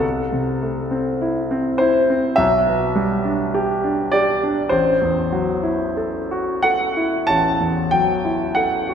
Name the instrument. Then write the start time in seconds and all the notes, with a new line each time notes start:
grand piano
Already playing: C2
0.00 A4
0.32 C3
0.63 A3
0.91 C4
1.22 E4
1.51 C4
1.78 E4 C5
2.10 C4
2.36 B1 E5
2.67 B2
2.95 G3
3.25 D4
3.54 G4
3.84 D4
4.12 G4 D5
4.43 D4
4.69 A1 C5
5.02 E2
5.32 F#3
5.63 E4
5.97 A4
6.31 F#4
6.63 A4 F#5
6.97 E4
7.27 A1 A5
7.60 E2
7.91 F#3 G5
8.25 E4
8.55 A4 F#5
8.89 F#4